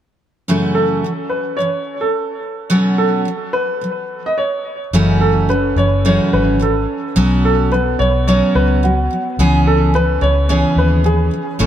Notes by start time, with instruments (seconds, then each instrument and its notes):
0.48 steel-string acoustic guitar F#2 C#3 E3 A3 C#4 F#4
0.75 upright piano A4
1.04 steel-string acoustic guitar F#2 C#3 E3
1.29 upright piano B4
1.57 steel-string acoustic guitar F#2 C#3, upright piano C#5
1.61 steel-string acoustic guitar E3
2.01 upright piano A4
2.70 steel-string acoustic guitar B2 F#3 B3 C#4 F#4
2.98 upright piano A4
3.25 steel-string acoustic guitar B2 F#3
3.53 upright piano B4
3.81 steel-string acoustic guitar B2 F#3
4.26 upright piano D#5
4.38 upright piano C#5
4.93 fingered electric bass F#1, steel-string acoustic guitar F#2 C#3 E3 A3 C#4 F#4
5.21 upright piano A4
5.49 steel-string acoustic guitar F#2 C#3 E3, upright piano B4
5.76 fingered electric bass F#1, steel-string acoustic guitar F#2 C#3 E3, upright piano C#5
6.05 steel-string acoustic guitar F#2 C#3 E3 A3 C#4 F#4, upright piano C#5
6.33 fingered electric bass G#1, upright piano B4
6.59 steel-string acoustic guitar F#2 C#3 E3, upright piano A4
7.16 fingered electric bass B1, steel-string acoustic guitar B2 F#3 B3 C#4 F#4
7.45 upright piano A4
7.71 steel-string acoustic guitar B2 F#3, upright piano B4
7.99 fingered electric bass B1, steel-string acoustic guitar B2 F#3, upright piano C#5
8.27 steel-string acoustic guitar B2 F#3 B3 C#4 F#4, upright piano C#5
8.55 fingered electric bass C#2, upright piano B4
8.83 steel-string acoustic guitar B2 F#3, upright piano F#4
9.11 steel-string acoustic guitar B2 F#3
9.39 fingered electric bass C#2, steel-string acoustic guitar C#3 E3 B3 C#4 G#4
9.67 upright piano A4
9.94 steel-string acoustic guitar C#3 E3, upright piano B4
10.21 fingered electric bass C#2, steel-string acoustic guitar C#3 E3, upright piano C#5
10.49 steel-string acoustic guitar C#3 E3 B3 C#4 G#4, upright piano C#5
10.76 fingered electric bass D#2, upright piano B4
11.04 steel-string acoustic guitar C#3 E3, upright piano G#4
11.31 steel-string acoustic guitar C#3 E3
11.59 fingered electric bass A1, steel-string acoustic guitar A2 E3 A3 C#4 E4 A4